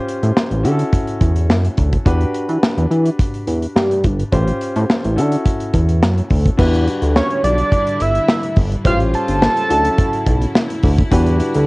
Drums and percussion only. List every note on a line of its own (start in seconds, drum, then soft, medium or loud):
0.08 closed hi-hat medium
0.23 closed hi-hat medium
0.37 snare loud
0.51 closed hi-hat soft
0.65 closed hi-hat medium
0.79 closed hi-hat medium
0.93 kick loud
0.93 closed hi-hat medium
1.07 closed hi-hat soft
1.21 kick medium
1.21 closed hi-hat medium
1.36 closed hi-hat medium
1.50 snare loud
1.65 closed hi-hat soft
1.77 kick loud
1.77 closed hi-hat medium
1.93 kick medium
1.93 closed hi-hat soft
2.06 kick loud
2.06 closed hi-hat medium
2.21 closed hi-hat soft
2.35 closed hi-hat medium
2.49 closed hi-hat medium
2.63 snare loud
2.78 closed hi-hat soft
2.91 closed hi-hat medium
3.06 closed hi-hat medium
3.19 kick loud
3.19 closed hi-hat medium
3.34 closed hi-hat soft
3.47 closed hi-hat medium
3.62 closed hi-hat medium
3.76 snare loud
3.91 closed hi-hat medium
4.04 kick loud
4.04 closed hi-hat medium
4.19 closed hi-hat medium
4.32 kick loud
4.32 closed hi-hat medium
4.47 closed hi-hat soft
4.61 closed hi-hat medium
4.76 closed hi-hat medium
4.90 snare loud
5.04 closed hi-hat soft
5.18 closed hi-hat medium
5.32 closed hi-hat medium
5.45 kick loud
5.45 closed hi-hat medium
5.60 closed hi-hat soft
5.74 kick medium
5.74 closed hi-hat medium
5.89 closed hi-hat medium
6.03 snare loud
6.18 closed hi-hat soft
6.30 kick loud
6.30 open hi-hat medium
6.46 kick medium
6.46 closed hi-hat medium
6.59 kick loud
6.59 crash loud
6.74 closed hi-hat soft
6.88 closed hi-hat medium
7.02 closed hi-hat medium
7.16 snare loud
7.31 closed hi-hat medium
7.44 closed hi-hat loud
7.58 closed hi-hat medium
7.72 kick loud
7.72 closed hi-hat medium
7.87 closed hi-hat medium
8.00 closed hi-hat medium
8.15 closed hi-hat medium
8.29 snare loud
8.43 closed hi-hat medium
8.56 kick loud
8.56 open hi-hat medium
8.72 closed hi-hat medium
8.85 kick loud
8.85 closed hi-hat medium
9.00 closed hi-hat soft
9.14 closed hi-hat medium
9.28 closed hi-hat medium
9.42 snare loud
9.57 closed hi-hat soft
9.70 closed hi-hat medium
9.85 closed hi-hat medium
9.98 kick loud
9.98 closed hi-hat medium
10.13 closed hi-hat medium
10.26 kick medium
10.26 closed hi-hat medium
10.42 closed hi-hat medium
10.55 snare loud
10.70 closed hi-hat medium
10.83 kick loud
10.83 open hi-hat medium
10.98 kick loud
10.98 closed hi-hat medium
11.12 kick loud
11.12 closed hi-hat loud
11.26 closed hi-hat soft
11.40 closed hi-hat medium
11.54 closed hi-hat medium